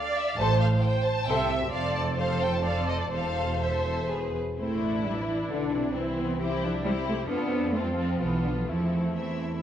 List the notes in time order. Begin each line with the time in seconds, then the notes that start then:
Already playing: D5 F5
0.17 E5
0.29 F5
0.38 A1 A2 A4 C5 A5
0.60 F5
0.83 C5 G5
1.04 A5
1.27 C2 C3 A4 C5 E5 G5
1.48 E5
1.71 F1 F2 A4 C5 D5 F5
1.95 A5
2.17 A4 C5 F5
2.41 G5
2.53 A5
2.63 A4 C5 D5 F5
2.89 D#5
3.00 D5
3.11 E1 E2 A4 C5 F5
3.62 A4 C5 E5
4.10 G#4 B4
4.57 A1 A3 C4 E4 C5
4.81 D4
5.04 G3 B4
5.16 F3
5.26 E3
5.49 B1 D3 D4
5.72 C3
5.95 C2 E3 C4 E4
6.18 B3
6.39 C4 E4 G4 C5
6.62 F3 D4
6.84 G3 C4 E4 G4 C5
7.07 A3
7.28 F2 B3 C4 D4 F4 A4
7.73 A3 C4 F4 A4
7.86 G3
7.97 F3
8.20 B1 E3 B3 F4 A4
8.44 D3
8.56 F3
8.67 E2 F3 A3 C4 E4 A4
9.15 E3 C4 E4 E5